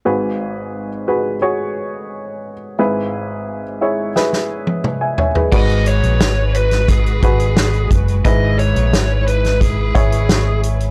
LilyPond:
<<
  \new Staff \with { instrumentName = "Lead electric guitar" } { \time 4/4 \key gis \minor \tempo 4 = 88 r1 | r1 | dis''8 cis''4 b'8 gis'4. r8 | dis''8 cis''4 b'8 gis'4. r8 | }
  \new Staff \with { instrumentName = "Upright piano" } { \time 4/4 \key gis \minor << { r1 | r2. r16 <e'' gis''>16 <cis'' e''>16 <gis' b'>16~ | <gis' b'>16 r2. r8. | r1 | } \\ { <fis' gis' b'>4 r8 <fis' gis' b'>8 <fis' gis' cis''>4. r8 | <e' gis' b'>4 r8 <e' gis' cis''>8 <e' gis' b'>4. r8 | <fis' gis' b'>4. r4 <fis' gis' b'>4 r8 | <e' gis' b'>4. r4 <e' gis' cis''>4 r8 | } >> }
  \new Staff \with { instrumentName = "Upright piano" } { \clef bass \time 4/4 \key gis \minor <gis,, gis,>1 | <gis,, gis,>1 | gis,4. r2 r8 | gis,4. r2 r8 | }
  \new Staff \with { instrumentName = "String section" } { \time 4/4 \key gis \minor << { r1 | r1 | <fis' b'>1 | <e' b'>1 | } \\ { r1 | r1 | gis1~ | gis1 | } >> }
  \new Staff \with { instrumentName = "Fingered electric bass" } { \clef bass \time 4/4 \key gis \minor r1 | r1 | gis,,8. ais,,16 gis,,4. gis,,4 fis,,8 | gis,,8. ais,,16 gis,,4. gis,,4. | }
  \new DrumStaff \with { instrumentName = "Drums" } \drummode { \time 4/4 r4 r4 r4 r4 | r4 r4 sn16 sn8 tommh16 toml8 tomfh16 tomfh16 | <cymc bd>16 hh16 hh16 hh16 <hh sn>8 hh16 <hh sn>16 <hh bd>16 hh16 <hh bd>16 hh16 <hh sn>16 hh16 <hh bd>16 hh16 | <hh bd>8 hh16 hh16 <hh sn>8 hh16 <hh sn>16 <hh bd>8 <hh bd>16 hh16 <hh sn>8 hh16 hh16 | }
>>